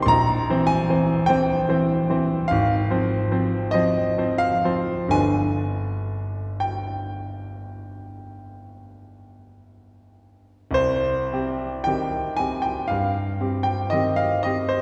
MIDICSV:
0, 0, Header, 1, 2, 480
1, 0, Start_track
1, 0, Key_signature, -3, "minor"
1, 0, Tempo, 1200000
1, 43, Time_signature, 4, 2, 24, 8
1, 1003, Tempo, 1237113
1, 1483, Tempo, 1408451
1, 1963, Tempo, 1488834
1, 2443, Tempo, 1395349
1, 3403, Tempo, 1348315
1, 3883, Tempo, 1092896
1, 4363, Tempo, 1027397
1, 5738, End_track
2, 0, Start_track
2, 0, Title_t, "Grand piano"
2, 0, Program_c, 0, 0
2, 0, Control_c, 0, 64, 127
2, 0, Note_on_c, 0, 51, 55
2, 0, Note_on_c, 0, 60, 59
2, 0, Note_on_c, 0, 67, 61
2, 0, Note_on_c, 0, 79, 103
2, 10, Note_on_c, 0, 84, 77
2, 23, Note_on_c, 0, 34, 75
2, 33, Note_on_c, 0, 82, 116
2, 42, Note_off_c, 0, 84, 0
2, 49, Control_c, 0, 64, 0
2, 50, Note_off_c, 0, 51, 0
2, 50, Note_off_c, 0, 60, 0
2, 52, Note_off_c, 0, 67, 0
2, 53, Note_off_c, 0, 79, 0
2, 131, Control_c, 0, 64, 127
2, 186, Note_off_c, 0, 34, 0
2, 199, Note_on_c, 0, 52, 56
2, 201, Note_on_c, 0, 60, 58
2, 202, Note_on_c, 0, 72, 61
2, 267, Note_on_c, 0, 80, 97
2, 274, Note_off_c, 0, 82, 0
2, 342, Note_off_c, 0, 52, 0
2, 343, Note_off_c, 0, 60, 0
2, 344, Note_off_c, 0, 72, 0
2, 359, Note_on_c, 0, 52, 49
2, 360, Note_on_c, 0, 60, 55
2, 361, Note_on_c, 0, 72, 57
2, 503, Note_off_c, 0, 52, 0
2, 503, Note_off_c, 0, 60, 0
2, 504, Note_off_c, 0, 72, 0
2, 505, Note_on_c, 0, 79, 101
2, 512, Note_off_c, 0, 80, 0
2, 515, Note_on_c, 0, 52, 55
2, 516, Note_on_c, 0, 60, 56
2, 517, Note_on_c, 0, 72, 62
2, 662, Note_off_c, 0, 52, 0
2, 663, Note_off_c, 0, 60, 0
2, 663, Note_off_c, 0, 72, 0
2, 675, Note_on_c, 0, 52, 55
2, 677, Note_on_c, 0, 60, 52
2, 678, Note_on_c, 0, 72, 55
2, 823, Note_off_c, 0, 52, 0
2, 825, Note_off_c, 0, 60, 0
2, 825, Note_off_c, 0, 72, 0
2, 839, Note_on_c, 0, 52, 54
2, 840, Note_on_c, 0, 60, 53
2, 842, Note_on_c, 0, 72, 55
2, 985, Note_off_c, 0, 52, 0
2, 985, Note_off_c, 0, 60, 0
2, 987, Note_off_c, 0, 72, 0
2, 991, Note_on_c, 0, 77, 92
2, 996, Note_off_c, 0, 79, 0
2, 1002, Note_on_c, 0, 32, 73
2, 1011, Control_c, 0, 64, 0
2, 1091, Control_c, 0, 64, 127
2, 1153, Note_off_c, 0, 32, 0
2, 1156, Note_on_c, 0, 53, 50
2, 1158, Note_on_c, 0, 60, 53
2, 1160, Note_on_c, 0, 72, 55
2, 1300, Note_off_c, 0, 53, 0
2, 1301, Note_off_c, 0, 60, 0
2, 1302, Note_off_c, 0, 72, 0
2, 1315, Note_on_c, 0, 53, 50
2, 1317, Note_on_c, 0, 60, 51
2, 1318, Note_on_c, 0, 72, 58
2, 1466, Note_off_c, 0, 53, 0
2, 1467, Note_off_c, 0, 60, 0
2, 1467, Note_off_c, 0, 72, 0
2, 1470, Note_on_c, 0, 75, 91
2, 1477, Note_off_c, 0, 77, 0
2, 1479, Note_on_c, 0, 53, 52
2, 1481, Note_on_c, 0, 60, 54
2, 1483, Note_on_c, 0, 72, 55
2, 1620, Note_off_c, 0, 53, 0
2, 1621, Note_off_c, 0, 60, 0
2, 1622, Note_off_c, 0, 72, 0
2, 1631, Note_on_c, 0, 53, 49
2, 1632, Note_on_c, 0, 60, 47
2, 1634, Note_on_c, 0, 72, 55
2, 1701, Note_on_c, 0, 77, 97
2, 1709, Note_off_c, 0, 75, 0
2, 1780, Note_off_c, 0, 53, 0
2, 1780, Note_off_c, 0, 60, 0
2, 1781, Note_off_c, 0, 72, 0
2, 1789, Note_on_c, 0, 53, 54
2, 1792, Note_on_c, 0, 60, 49
2, 1792, Note_on_c, 0, 72, 55
2, 1940, Note_on_c, 0, 31, 61
2, 1943, Note_on_c, 0, 50, 51
2, 1946, Note_off_c, 0, 53, 0
2, 1947, Note_on_c, 0, 62, 50
2, 1948, Note_off_c, 0, 60, 0
2, 1948, Note_off_c, 0, 72, 0
2, 1948, Note_on_c, 0, 80, 103
2, 1951, Note_on_c, 0, 71, 51
2, 1956, Note_off_c, 0, 77, 0
2, 1971, Control_c, 0, 64, 0
2, 2033, Control_c, 0, 64, 127
2, 2430, Note_on_c, 0, 79, 77
2, 2436, Note_off_c, 0, 80, 0
2, 3649, Note_off_c, 0, 79, 0
2, 3856, Note_off_c, 0, 31, 0
2, 3857, Note_off_c, 0, 50, 0
2, 3857, Note_on_c, 0, 36, 62
2, 3859, Note_off_c, 0, 62, 0
2, 3862, Note_off_c, 0, 71, 0
2, 3869, Note_on_c, 0, 72, 88
2, 3891, Control_c, 0, 64, 0
2, 3981, Control_c, 0, 64, 127
2, 4101, Note_off_c, 0, 36, 0
2, 4124, Note_on_c, 0, 60, 43
2, 4127, Note_on_c, 0, 67, 49
2, 4344, Note_off_c, 0, 60, 0
2, 4345, Note_off_c, 0, 67, 0
2, 4348, Note_on_c, 0, 79, 84
2, 4354, Note_off_c, 0, 72, 0
2, 4360, Note_on_c, 0, 51, 45
2, 4361, Note_on_c, 0, 60, 44
2, 4361, Note_on_c, 0, 67, 47
2, 4587, Note_off_c, 0, 51, 0
2, 4587, Note_off_c, 0, 60, 0
2, 4587, Note_off_c, 0, 67, 0
2, 4593, Note_on_c, 0, 80, 87
2, 4599, Note_off_c, 0, 79, 0
2, 4604, Note_on_c, 0, 60, 45
2, 4606, Note_on_c, 0, 67, 47
2, 4711, Note_on_c, 0, 79, 78
2, 4719, Note_off_c, 0, 80, 0
2, 4823, Note_off_c, 0, 60, 0
2, 4824, Note_off_c, 0, 67, 0
2, 4831, Note_on_c, 0, 77, 80
2, 4835, Note_off_c, 0, 79, 0
2, 4842, Note_on_c, 0, 43, 53
2, 4850, Control_c, 0, 64, 0
2, 4926, Control_c, 0, 64, 127
2, 5069, Note_off_c, 0, 43, 0
2, 5078, Note_on_c, 0, 60, 45
2, 5080, Note_on_c, 0, 67, 48
2, 5185, Note_on_c, 0, 79, 82
2, 5190, Note_off_c, 0, 77, 0
2, 5299, Note_off_c, 0, 60, 0
2, 5300, Note_off_c, 0, 67, 0
2, 5309, Note_on_c, 0, 75, 80
2, 5311, Note_off_c, 0, 79, 0
2, 5320, Note_on_c, 0, 51, 45
2, 5324, Note_on_c, 0, 60, 47
2, 5325, Note_on_c, 0, 67, 52
2, 5432, Note_on_c, 0, 77, 79
2, 5435, Note_off_c, 0, 75, 0
2, 5544, Note_off_c, 0, 51, 0
2, 5546, Note_off_c, 0, 60, 0
2, 5546, Note_off_c, 0, 67, 0
2, 5557, Note_on_c, 0, 75, 81
2, 5558, Note_off_c, 0, 77, 0
2, 5568, Note_on_c, 0, 60, 43
2, 5570, Note_on_c, 0, 67, 49
2, 5677, Note_on_c, 0, 72, 75
2, 5680, Note_off_c, 0, 75, 0
2, 5738, Note_off_c, 0, 60, 0
2, 5738, Note_off_c, 0, 67, 0
2, 5738, Note_off_c, 0, 72, 0
2, 5738, End_track
0, 0, End_of_file